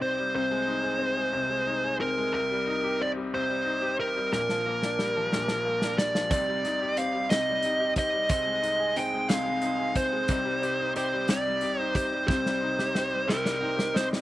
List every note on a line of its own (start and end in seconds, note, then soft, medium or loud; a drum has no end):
0.00 0.34 C2 medium
0.00 0.34 C3 medium
0.00 0.19 G3 medium
0.00 0.35 C4 medium
0.00 0.35 D#4 medium
0.00 0.35 G4 medium
0.00 0.34 C5 medium
0.19 0.33 G3 soft
0.34 1.31 C2 medium
0.34 1.31 C3 medium
0.34 1.96 C5 loud
0.51 1.15 G#3 medium
0.67 1.65 D#4 medium
0.84 1.82 G#4 medium
0.99 2.00 C4 medium
1.17 1.48 G#3 medium
1.32 2.28 C2 medium
1.32 2.29 C3 medium
1.50 2.17 G#3 medium
1.67 2.31 D#4 medium
1.84 2.31 G#4 medium
2.00 2.32 C4 medium
2.00 2.32 A#4 medium
2.18 2.33 G#3 medium
2.33 3.32 C2 medium
2.33 3.32 C3 medium
2.33 3.01 A#4 medium
2.51 3.15 G3 medium
2.67 3.64 D#4 medium
2.84 3.80 G4 medium
3.00 3.98 C4 medium
3.00 3.10 D5 medium
3.17 3.48 G3 medium
3.33 4.28 C2 medium
3.33 4.29 C3 medium
3.33 3.95 C5 medium
3.49 4.15 G3 medium
3.65 4.29 D#4 medium
3.82 4.30 G4 medium
3.99 4.31 C4 medium
3.99 4.32 A#4 medium
4.16 4.32 G3 medium
4.32 5.31 A#1 medium
4.32 5.31 A#2 medium
4.32 6.03 A#4 medium
4.32 snare medium
4.49 5.15 F3 medium
4.49 snare medium
4.66 5.64 A#3 medium
4.83 5.81 D4 medium
4.83 snare medium
4.99 5.98 G3 medium
4.99 snare medium
5.17 5.47 F3 medium
5.32 6.27 A#1 medium
5.32 6.28 A#2 medium
5.32 snare medium
5.48 6.14 F3 medium
5.48 snare medium
5.65 6.29 A#3 medium
5.82 6.30 D4 medium
5.82 snare medium
5.98 6.30 G3 medium
5.98 6.30 D5 medium
5.98 snare loud
6.15 6.31 F3 medium
6.15 snare medium
6.30 7.29 C2 medium
6.30 6.63 C3 medium
6.30 7.29 C3 medium
6.30 6.64 G3 medium
6.30 6.64 C4 medium
6.30 6.64 D#4 medium
6.30 6.63 G4 medium
6.30 6.99 D5 medium
6.30 6.62 D5 medium
6.30 kick loud
6.30 closed hi-hat loud
6.49 7.13 G3 medium
6.63 6.95 C4 soft
6.63 7.63 D#4 medium
6.63 6.97 D#4 soft
6.63 6.97 G4 soft
6.63 6.97 D5 medium
6.63 snare soft
6.63 closed hi-hat soft
6.81 7.79 G4 medium
6.97 7.30 C4 medium
6.97 7.96 C4 medium
6.97 7.30 D#4 medium
6.97 7.30 G4 medium
6.97 7.32 D5 medium
6.97 7.28 F5 loud
6.97 closed hi-hat medium
7.14 7.47 G3 soft
7.30 8.26 C2 medium
7.30 8.27 C3 medium
7.30 7.65 C3 medium
7.30 7.64 G3 medium
7.30 7.62 C4 medium
7.30 7.63 D#4 medium
7.30 7.64 G4 medium
7.30 7.92 D#5 loud
7.30 snare loud
7.30 closed hi-hat medium
7.48 8.12 G3 medium
7.63 7.96 C4 medium
7.63 7.97 D#4 medium
7.63 8.28 D#4 medium
7.63 7.96 G4 medium
7.63 closed hi-hat medium
7.80 8.28 G4 medium
7.96 8.29 C4 medium
7.96 8.28 C4 soft
7.96 8.29 D#4 medium
7.96 8.30 G4 medium
7.96 8.30 D#5 loud
7.96 kick medium
7.96 closed hi-hat medium
8.14 8.29 G3 medium
8.29 9.28 C2 medium
8.29 9.29 C3 medium
8.29 8.62 C4 medium
8.29 8.63 D#4 loud
8.29 8.63 G#4 medium
8.29 8.61 C5 loud
8.29 8.98 D#5 loud
8.29 kick loud
8.29 closed hi-hat loud
8.46 9.12 G#3 medium
8.62 9.61 D#4 medium
8.62 8.96 D#4 soft
8.62 8.97 G#4 soft
8.62 8.96 C5 medium
8.62 closed hi-hat medium
8.80 9.77 G#4 medium
8.96 9.29 C4 medium
8.96 9.95 C4 medium
8.96 9.30 D#4 medium
8.96 9.30 G#4 medium
8.96 9.28 C5 medium
8.96 9.29 G5 loud
8.96 closed hi-hat medium
9.13 9.44 G#3 medium
9.29 10.25 C2 medium
9.29 10.26 C3 medium
9.29 9.62 C4 medium
9.29 9.63 D#4 medium
9.29 9.63 G#4 medium
9.29 9.63 C5 medium
9.29 9.98 F5 loud
9.29 snare loud
9.29 closed hi-hat medium
9.46 10.11 G#3 medium
9.62 9.96 C4 medium
9.62 10.27 D#4 medium
9.62 9.96 D#4 medium
9.62 9.97 G#4 medium
9.62 closed hi-hat medium
9.67 9.95 C5 medium
9.79 10.27 G#4 medium
9.96 10.28 C4 medium
9.96 10.30 D#4 soft
9.96 10.30 G#4 medium
9.96 10.29 C5 medium
9.96 10.92 C5 loud
9.96 kick loud
9.96 closed hi-hat medium
10.12 10.28 G#3 medium
10.28 11.28 C2 medium
10.28 10.62 C3 medium
10.28 11.27 C3 medium
10.28 10.63 G3 medium
10.28 10.63 C4 medium
10.28 10.63 D#4 loud
10.28 10.62 G4 medium
10.28 10.61 D5 medium
10.28 kick loud
10.28 closed hi-hat medium
10.45 11.12 G3 medium
10.62 10.94 C4 soft
10.62 10.95 D#4 soft
10.62 10.95 G4 medium
10.62 10.96 G4 medium
10.62 10.95 D5 medium
10.62 closed hi-hat medium
10.79 11.78 D#4 medium
10.95 11.28 C4 medium
10.95 11.28 D#4 medium
10.95 11.61 G4 medium
10.95 11.28 G4 medium
10.95 11.27 C5 medium
10.95 11.27 D5 medium
10.95 closed hi-hat medium
11.13 11.44 G3 medium
11.28 12.25 C2 medium
11.28 12.25 C3 medium
11.28 11.63 C3 medium
11.28 11.63 G3 medium
11.28 11.60 C4 medium
11.28 11.61 D#4 medium
11.28 11.62 G4 medium
11.28 11.62 D5 medium
11.28 11.81 D5 loud
11.28 snare loud
11.28 closed hi-hat medium
11.46 12.11 G3 medium
11.61 11.95 C4 medium
11.61 11.95 D#4 medium
11.61 11.95 G4 medium
11.61 11.94 G4 medium
11.61 closed hi-hat medium
11.65 11.93 D5 medium
11.79 12.27 D#4 medium
11.79 11.96 C5 loud
11.94 12.27 C4 medium
11.94 12.28 D#4 soft
11.94 12.28 G4 medium
11.94 12.27 C5 medium
11.94 12.28 D5 soft
11.94 kick medium
11.94 closed hi-hat medium
12.12 12.28 G3 medium
12.27 13.26 C2 medium
12.27 12.61 C3 medium
12.27 13.26 C3 medium
12.27 12.61 G3 loud
12.27 12.62 C4 medium
12.27 12.62 D#4 medium
12.27 12.62 G4 medium
12.27 13.57 C5 loud
12.27 12.60 C5 medium
12.27 kick loud
12.27 snare medium
12.46 13.10 G3 medium
12.46 snare medium
12.61 12.94 C4 soft
12.61 13.59 D#4 medium
12.61 12.95 D#4 soft
12.61 12.95 G4 soft
12.61 12.94 C5 medium
12.79 13.75 G4 medium
12.79 snare medium
12.95 13.93 C4 medium
12.95 13.28 C4 medium
12.95 13.28 D#4 medium
12.95 13.27 G4 medium
12.95 13.27 C5 medium
12.95 snare medium
13.11 13.43 G3 medium
13.27 14.21 C2 medium
13.27 14.21 C3 medium
13.27 13.62 C3 medium
13.27 13.62 G3 medium
13.27 13.60 C4 medium
13.27 13.61 D#4 medium
13.27 13.61 G4 medium
13.27 13.97 A#4 medium
13.27 13.61 C5 medium
13.27 snare medium
13.45 14.09 G3 medium
13.45 snare medium
13.61 13.94 C4 medium
13.61 14.21 D#4 medium
13.61 13.95 D#4 medium
13.61 13.94 G4 medium
13.61 13.93 C5 medium
13.61 13.92 G5 medium
13.76 14.21 G4 medium
13.76 snare medium
13.94 14.21 C4 medium
13.94 14.21 D#4 medium
13.94 14.21 G4 medium
13.94 14.21 C5 medium
13.94 14.05 C5 medium
13.94 14.21 D#5 medium
13.94 snare loud
14.10 14.21 G3 medium
14.10 snare medium